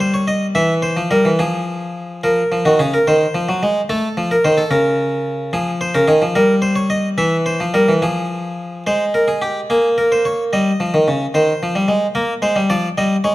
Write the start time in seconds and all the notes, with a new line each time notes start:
Already playing: G3
0.00 C5
0.14 C#5
0.28 D#5
0.55 E3 E5
0.82 C5
0.97 F3
1.11 G3 A#4
1.25 E3
1.39 F3 G#4
2.24 F3 A#4
2.52 F3
2.65 D#3 F#4
2.79 C#3 G#4
2.94 A#4
3.08 D#3 C5
3.35 F3
3.49 F#3
3.63 G#3
3.89 A3 A4
4.17 F3
4.31 A#4
4.45 D#3 C5
4.58 A4
4.71 C#3 A#4
5.53 F3 G#4
5.81 C5
5.95 C#3 A#4
6.08 D#3 G#4
6.22 F3
6.35 G3 A#4
6.62 C5
6.76 C#5
6.90 D#5
7.18 E3 E5
7.46 C5
7.60 F3
7.74 G3 A#4
7.89 E3
8.02 F3 G#4
8.87 G#3 C5
9.14 A#4
9.28 G#4
9.42 G4
9.70 A#3 G#4
9.98 A#4
10.12 C5
10.25 C#5
10.53 G3 D#5
10.80 F3
10.94 D#3
11.08 C#3
11.34 D#3 C5
11.63 F3
11.75 G3
11.88 G#3
12.15 A#3 A#4
12.42 G#3 C5
12.56 G3
12.70 F3 D5
12.98 G3 D#5
13.24 G#3 C#5